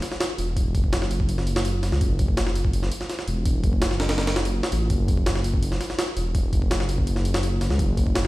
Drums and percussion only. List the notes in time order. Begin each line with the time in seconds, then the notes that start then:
0.02 snare, open hi-hat
0.12 snare
0.20 snare, open hi-hat
0.38 open hi-hat
0.57 kick, open hi-hat
0.75 kick, open hi-hat
0.84 kick
0.93 snare, open hi-hat
1.02 snare
1.11 open hi-hat
1.20 kick
1.29 open hi-hat
1.38 snare
1.47 open hi-hat
1.56 snare
1.65 open hi-hat
1.83 snare, open hi-hat
1.92 snare
2.01 kick, open hi-hat
2.19 kick, open hi-hat
2.28 kick
2.37 snare, open hi-hat
2.47 snare
2.55 open hi-hat
2.65 kick
2.73 open hi-hat
2.83 snare
2.92 open hi-hat
3.01 snare
3.10 snare, open hi-hat
3.19 snare
3.28 open hi-hat
3.46 kick, open hi-hat
3.64 kick, open hi-hat
3.73 kick
3.82 snare, open hi-hat
3.91 snare
4.00 snare, open hi-hat
4.09 snare, open hi-hat
4.18 snare, open hi-hat
4.27 snare, open hi-hat
4.36 snare
4.45 open hi-hat
4.63 snare
4.72 open hi-hat
4.90 kick, open hi-hat
5.08 kick, open hi-hat
5.17 kick
5.26 snare, open hi-hat
5.36 snare
5.44 open hi-hat
5.54 kick
5.63 open hi-hat
5.72 snare
5.81 snare, open hi-hat
5.90 snare
5.99 snare, open hi-hat
6.17 open hi-hat
6.35 kick, open hi-hat
6.53 kick, open hi-hat
6.62 kick
6.71 snare, open hi-hat
6.80 snare
6.89 open hi-hat
6.98 kick
7.07 open hi-hat
7.16 snare
7.25 open hi-hat
7.34 snare
7.43 open hi-hat
7.61 snare, open hi-hat
7.70 snare
7.79 kick, open hi-hat
7.97 kick, open hi-hat
8.07 kick
8.15 snare, open hi-hat